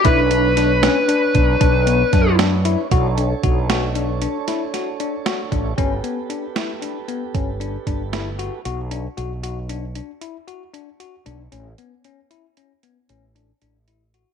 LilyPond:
<<
  \new Staff \with { instrumentName = "Lead electric guitar" } { \time 11/8 \key b \minor \tempo 4 = 115 b'1~ b'8 r4 | r1 r4. | r1 r4. | r1 r4. |
r1 r4. | }
  \new Staff \with { instrumentName = "Tonewheel organ" } { \time 11/8 \key b \minor <d' b' cis''>1~ <d' b' cis''>4. | <d' a' cis''>1~ <d' a' cis''>4. | <g' a' b'>1~ <g' a' b'>4. | r1 r4. |
r1 r4. | }
  \new Staff \with { instrumentName = "Tine electric piano" } { \time 11/8 \key b \minor e'8 d'8 d'8 cis'8 d'8 d'8 d'8 b8 d'8 d'8 e'8 | fis'8 d'8 fis'8 fis'8 d'8 d'8 e'8 fis'8 d'8 fis'8 d'8 | cis'8 b8 d'8 e'8 d'8 b8 cis'8 d'8 d'8 e'8 fis'8 | fis'8 d'8 fis'8 fis'8 d'8 d'8 e'8 fis'8 d'8 fis'8 d'8 |
cis'8 b8 cis'8 e'8 cis'8 b8 cis'8 d'8 d'8 e'8 fis'8 | }
  \new Staff \with { instrumentName = "Vibraphone" } { \time 11/8 \key b \minor d'1~ d'4 r8 | r1 r4. | r1 r4. | r1 r4. |
r1 r4. | }
  \new Staff \with { instrumentName = "Fretless electric bass" } { \clef bass \time 11/8 \key b \minor b,,2 r8 b,,8 b,,4 fis,4. | b,,4 b,,2 r2 a,,8 | g,,8 r2 r8 g,,4 g,,4. | b,,4 b,,2 r2 b,,8 |
a,,8 r2 r8 a,,4 a,,4. | }
  \new DrumStaff \with { instrumentName = "Drums" } \drummode { \time 11/8 <hh bd>8 hh8 <hh sn>8 <hh sn>8 hh8 <hh bd>8 <hh bd>8 hh8 <hh bd sn>8 <hh sn>8 hh8 | <hh bd>8 hh8 <hh bd>8 <hh sn>8 hh8 hh8 <hh sn>8 <hh sn>8 hh8 <hh sn>8 <hh bd>8 | <hh bd>8 hh8 hh8 <hh sn>8 hh8 hh8 <hh bd>8 hh8 <hh bd>8 <hh sn>8 hh8 | hh8 hh8 hh8 hh8 hh8 hh8 hh8 hh8 hh8 hh8 hh8 |
hh8 hh8 hh8 hh8 hh8 hh8 hh8 hh8 hh8 hh8 hh8 | }
>>